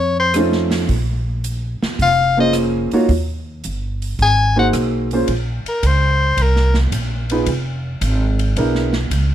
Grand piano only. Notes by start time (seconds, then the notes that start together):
0.36 A3 C#4 D#4 F4 C5
2.37 A#3 C#4 F4 G#4 C5
2.93 A#3 D#4 F4 F#4 C#5
4.56 A#3 D#4 F#4 G#4 C5
5.13 A#3 C#4 F4 G#4 C5
7.31 B3 D#4 F4 G#4 B4
8.57 B3 D4 E4 G#4 A#4